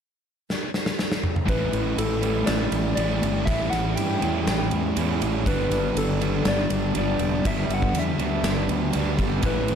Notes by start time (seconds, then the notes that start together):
0.50 snare
0.74 snare
0.86 snare
0.99 snare
1.12 snare
1.23 mid tom
1.36 mid tom
1.46 A1 A2 E3 G3 A3 C#4 E4 B4, kick, ride
1.73 A1, ride
1.98 A1 A4, ride
2.21 A2 E3 G3 A3 C#4 E4, ride
2.46 A1 D5, snare, ride
2.72 A1, ride
2.96 A1 A2 E3 G3 C#4 D5, ride
3.00 A3 E4
3.22 G1, ride
3.45 A1 A2 E3 G3 C#4 E5, kick, ride
3.50 A3 E4
3.70 A1 F#5, snare, ride
3.95 G2 G5, ride
4.20 E2 E3 G3 A3 C#4 E4, ride
4.24 A2
4.47 A1, snare, ride
4.71 E2, ride
4.95 E2 A2 E3 G3 A3 C#4 E4, ride
5.22 A1, ride
5.45 G1 G2 D3 G3 B3 D4 B4, kick, ride
5.70 G1, snare, ride
5.95 G1 A4, ride
6.21 G2 D3 G3 B3 D4, ride
6.45 G1 D5, snare, ride
6.70 G1, ride
6.95 G1 G2 D3 G3 B3 D4 D5, ride
7.19 E1, ride
7.45 G1 G2 D3 G3 B3 E5, kick, ride
7.49 D4
7.68 G1, ride
7.74 F#5
7.82 kick
7.93 E2, ride
7.99 E5
8.18 D2 D3 G3 B3 D4, ride
8.23 G2
8.43 G1, snare, ride
8.68 D2, ride
8.93 D2 G2 D3 G3 B3 D4, ride
9.18 G1, kick, ride
9.42 A1 A2 E3 G3 A3 C#4 B4, kick, ride
9.46 E4
9.68 A1, ride